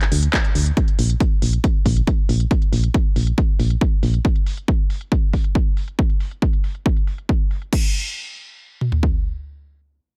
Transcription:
0.01 clap, closed hi-hat
0.12 fm bass D2, open hi-hat
0.23 closed hi-hat
0.33 kick, clap, closed hi-hat
0.44 closed hi-hat
0.55 fm bass D2, open hi-hat
0.66 closed hi-hat
0.77 kick, closed hi-hat
0.88 closed hi-hat
0.99 fm bass A#1, open hi-hat
1.10 closed hi-hat
1.20 kick, closed hi-hat
1.42 fm bass A#1, open hi-hat
1.53 closed hi-hat
1.64 kick, closed hi-hat
1.86 fm bass A#1, kick, open hi-hat
1.97 closed hi-hat
2.07 kick, closed hi-hat
2.29 fm bass A#1, open hi-hat
2.40 closed hi-hat
2.51 kick, closed hi-hat
2.62 closed hi-hat
2.72 fm bass A#1, open hi-hat
2.84 closed hi-hat
2.94 kick, closed hi-hat
3.16 fm bass A#1, open hi-hat
3.27 closed hi-hat
3.38 kick, closed hi-hat
3.59 fm bass A#1, open hi-hat
3.70 closed hi-hat
3.81 kick, closed hi-hat
4.03 fm bass A#1, open hi-hat
4.14 closed hi-hat
4.25 kick, closed hi-hat
4.36 closed hi-hat
4.46 open hi-hat
4.57 closed hi-hat
4.68 kick, closed hi-hat
4.90 open hi-hat
5.01 closed hi-hat
5.12 kick, closed hi-hat
5.33 kick, open hi-hat
5.44 closed hi-hat
5.55 kick, closed hi-hat
5.77 open hi-hat
5.88 closed hi-hat
5.99 kick, closed hi-hat
6.10 closed hi-hat
6.20 open hi-hat
6.31 closed hi-hat
6.42 kick, closed hi-hat
6.53 closed hi-hat
6.64 open hi-hat
6.75 closed hi-hat
6.86 kick
6.97 closed hi-hat
7.07 open hi-hat
7.18 closed hi-hat
7.29 kick
7.51 open hi-hat
7.62 closed hi-hat
7.73 kick, crash
8.81 mid tom
8.92 floor tom
9.03 kick

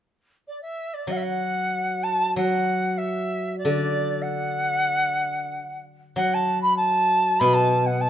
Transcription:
0.48 dizi D5
0.62 dizi E5
0.94 dizi D5
1.07 guzheng F#3
1.12 dizi F#5
1.17 dizi E5
1.23 dizi F#5
2.04 dizi A5
2.36 guzheng F#3, dizi F#5
2.98 dizi E5
3.58 dizi D5
3.65 guzheng D3
4.22 dizi F#5
6.16 guzheng F#3, dizi F#5
6.34 dizi A5
6.62 dizi B5
6.77 dizi A5
7.40 guzheng B2, dizi B5
7.54 dizi A5
7.86 dizi F#5
8.01 dizi A5

